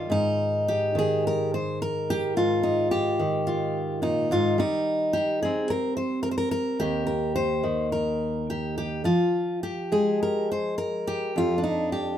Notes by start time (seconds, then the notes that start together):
Already playing: D#3 G3 D#4 F4
0.10 G#2 D#4
0.68 G4
0.95 D#3 G#4
1.27 A#4
1.54 C5
1.82 A#4
2.10 G4
2.36 G#2 F4
2.63 D#4
2.91 G4
3.19 D#3
3.47 F4
4.02 A#2 D#4
4.31 G#2 F4
4.58 G3 D#4
5.13 G4
5.42 C4 G#4
5.70 A#4
5.97 C5
6.23 A#4
6.31 C5
6.38 A#4
6.51 A#4
6.80 D#2 G4
7.07 A#4
7.36 C5
7.63 D#3
7.92 A#4
8.50 G4
8.78 G4
9.04 F3 F4
9.63 G4
9.92 G#3 G#4
10.23 A#4
10.52 C5
10.78 A#4
11.07 G4
11.36 F2 F4
11.58 D4
11.64 D#4
11.92 G4